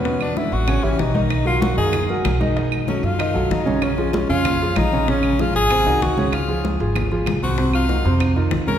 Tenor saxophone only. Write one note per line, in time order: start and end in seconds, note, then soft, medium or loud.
0.00 0.21 C#4 medium
0.22 0.39 D4 loud
0.38 0.54 E4 medium
0.53 0.85 F#4 loud
0.84 1.01 C#4 medium
1.00 1.46 D#4 medium
1.47 1.63 F4 loud
1.62 1.77 F#4 medium
1.78 2.07 G#4 loud
2.88 3.06 C#4 medium
3.04 3.53 F4 loud
3.52 3.84 D#4 medium
3.83 4.13 C#4 medium
4.14 4.28 C#4 medium
4.29 4.79 F4 loud
4.77 5.11 D#4 loud
5.09 5.42 C#4 loud
5.41 5.55 F4 medium
5.56 6.04 G#4 loud
6.03 6.35 F#4 loud
6.34 6.65 F4 medium
7.43 7.72 F#4 loud
7.75 8.18 F4 loud
8.68 8.79 A#4 loud